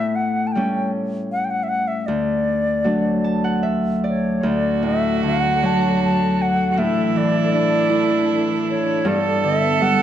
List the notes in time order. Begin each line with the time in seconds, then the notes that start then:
Already playing: A2 B3 E4 E5
0.15 F#5
0.47 A5
0.52 G3 G5
0.56 A3 C#4
1.32 F#5
1.44 G5
1.50 F#5
1.63 E5
1.69 F#5
1.87 E5
2.06 D2 D5
2.84 F#3 A3 D4
3.24 A5
3.44 F#5
3.63 E5
4.04 D5
4.08 C#5
4.43 D2 F#3 D4 F#4 A4 D5
4.83 A2 E5
5.23 D3 F#5
5.63 F#3 A5
6.04 A5
6.42 F#5
6.71 F#4
6.77 A2 E3 D4 E4 E5
7.16 E3 D5
7.52 D4 D5
7.90 E4
8.70 C#5
9.05 G2 A4 D5
9.09 G3 B3
9.44 D3 E5
9.81 G3 F#5